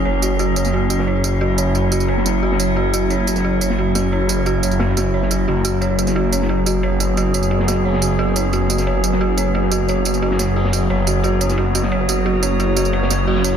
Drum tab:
RD |x-x-x-x-x-x-x-x-|x-x-x-x-x-x---x-|x-x-x-x-x-x-x-x-|x-x-x-x-x-x---x-|
HH |----------------|------------o---|----------------|------------o---|
TB |--x-x-xx--x---x-|--x-x-xx--x---x-|--x-x-xx--x---x-|--x-x-xx--x---x-|
SD |-------o---o----|---------oo--o--|-------o---o--o-|--------ooo--o--|

RD |x-x-x-x-x-x-x-x-|x-x-x-x-x-x---x-|x-x-x-x-x-x-x-x-|x-x-x-x-x-x---x-|
HH |----------------|------------o---|----------------|------------o---|
TB |--x-x-xx--x---x-|--x-x-xx--x---x-|--x-x-xx--x---x-|--x-x-xx--x---x-|
SD |-------o---o----|---------oo--o--|-------o---o----|---------oo--o--|

RD |x-x-x-x-x-x-x-x-|x-x-x-x-x-x---x-|
HH |----------------|------------o---|
TB |--x-x-xx--x---x-|--x-x-xx--x---x-|
SD |-------o---o----|---------oo--o--|